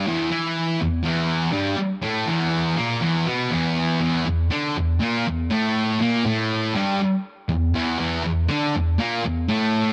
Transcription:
0.07 E2 E3
0.31 E3 E4
0.81 E2
1.03 E2 E3
1.52 G2 G3
1.78 muted distorted electric guitar stroke
2.02 A2 A3
2.26 E2 E3
2.77 A#2 A#3
3.01 E2 E3
3.26 B2 B3
3.51 E2 E3
4.00 E2 E3
4.26 E2
4.51 D3 D4
4.76 E2
5.00 A#2 A#3
5.26 E2
5.50 A2 A3
6.00 A#2 A#3
6.25 A2 A3
6.74 G2 G3
7.49 E2
7.74 E2 E3
7.99 E2 E3
8.24 E2
8.48 D3 D4
8.74 E2
8.98 A#2 A#3
9.23 E2
9.48 A2 A3

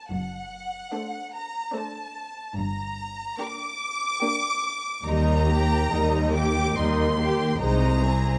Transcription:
Already playing: A5
0.11 F#1 F#2 F#5
0.93 A3 D4 A4 C5
1.36 A#5
1.73 A3 D4 A4 C5 A5
2.56 G1 G2 A#5
3.40 A#3 D4 G4 A#4 D6
4.22 A#3 D4 G4 A#4
5.05 D#2 G3 D#4 A#4 D#5 A#5
5.49 A#3 G4 G5
5.91 D#2 G3 D#4 A#4 D#5
6.33 A#3 G4 G5 D6
6.74 D#2 G3 D#4 A#4 D#5 C6
7.19 A#3 G4 G5
7.60 C2 G#3 D#4 C5 D#5 A#5
8.02 C4 G#4 C5

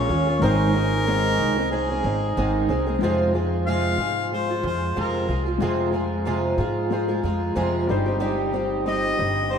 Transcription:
Already playing: F4 G#4 A#4 C#5 F5 G#5 C#6
0.09 D#2 G#3 C#4 F4 G#4
0.27 C#4 F4 G#4
0.39 G#1 G#2 D#3 G#3 C4 D#4 A#4 C5 D#5 D#6
0.43 G#3 C4 D#4 G#4
0.74 G#3 C4 D#4 G#4
1.07 G#2 D#3 G#3 C4 D#4 G#4
1.39 C2
1.57 G#3 C4 D#4 G#4
1.71 G#3 C4 D#4 G#4
1.90 G#3 C4 D#4 G#4
2.04 G#1 G#3 C4 D#4 G#4
2.37 G#1 G#2 D#3 G#3 C4 D#4 G#4
2.69 C2 G#3 C4 D#4 G#4
2.87 G#3 C4 D#4 G#4
2.99 F2 G#3 F4 G#4 C5 F5 C6
3.03 C3 F3 G#3 F4 G#4 C5
3.34 F3 G#3 F4 G#4
3.67 F2 C3 F3 G#3 F4 G#4 F5
3.98 G#2 F3 G#3 F4 G#4
4.32 F3 G#3 F4 G#4 C5
4.49 F3 G#3 F4 G#4
4.63 F2 F3 G#3 F4 G#4 C5
4.96 F2 C3 F3 G#3 F4 G#4 A#4
5.28 C2 F3 G#3 F4 G#4
5.46 F3 G#3 F4 G#4
5.58 F2 C3 F3 G#3 F4 A#5
5.62 G#4
5.92 F3 G#3 F4 G#4
6.25 F2 C3 F3 G#3 F4 G#4
6.58 G#2 F3 G#3 F4 G#4
6.90 F3 G#3 F4 G#4 C5
7.08 F3 G#3 F4 G#4
7.23 F2 F3 G#3 F4 G#4
7.55 F2 C3 F3 G#3 F4 G#4
7.87 G1 G3 C4 D#4 C5 D#5 G5 D#6
7.91 G4
8.06 C4 D#4 G4
8.20 G3 C4 D#4 G4
8.53 G3 C4 D#4 G4
8.86 G3 C4 D#4 G4 D#5
9.18 G1 G3 C4 D#4 G4
9.51 G3 C4 D#4 G4 C5

